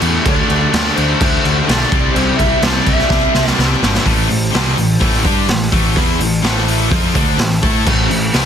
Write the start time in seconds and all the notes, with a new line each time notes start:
Already playing: A2 E3 A3 E4 A4
0.02 E2 A2 E3 A3, crash
0.25 D2 D3 A3 D4 D5 E5, kick, crash
0.50 D2 D3 A3 D4, crash
0.73 D2 D3 A3 D4 D5, snare, crash
0.95 D2 D3 A3 C5, crash
0.99 D4
1.21 D2 D3 A3 D4, kick, crash
1.44 D2 D3 A3 D4, crash
1.66 B1 D3 A3 D4 D5, snare, crash
1.91 C2 C3 G3 C4 D5, kick, crash
2.15 C2 C3 G3 C4 C5, crash
2.37 C2 C3 G3 C4 E5, kick, crash
2.62 C2 C3 G3 C4 D5, snare, crash
2.84 C2 C3 G3 C4 E5, kick, crash
2.99 snare
3.08 C2 C3 G3 C4, kick, snare
3.34 C2 C3 G3 C4, snare
3.47 D5, snare
3.57 C2 C3 G3 C4, snare
3.82 G1 C3 G3 C4, snare
3.95 snare
4.02 A2 E3 A3 E4 C5 A5, kick
4.06 A1, open hi-hat
4.28 A1 A2 E3, open hi-hat
4.51 C2 C3 G3 C4, open hi-hat
4.55 snare
4.77 A1 A2 E3, open hi-hat
5.00 A1 A2 E3 A3, kick, open hi-hat
5.14 snare
5.24 G2 G3 D4 G4, kick, open hi-hat
5.48 A1 A2 E3, snare, open hi-hat
5.72 A1 A2 E3 A3, kick, open hi-hat
5.96 E2 E3 B3 E4, kick, open hi-hat
6.20 A1 A2 E3, open hi-hat
6.43 A1 A2 E3 A3, snare, open hi-hat
6.68 open hi-hat
6.90 F2 F3 C4 F4, kick, open hi-hat
7.14 D2 D3 A3 D4, kick, open hi-hat
7.38 A1 A2 E3, snare, open hi-hat
7.63 A2 A3 E4 A4, kick, open hi-hat
7.87 A1 A2 E3 A3, kick, crash
8.10 A1 A2 E3, open hi-hat
8.34 C2 C3 G3 C4, snare, open hi-hat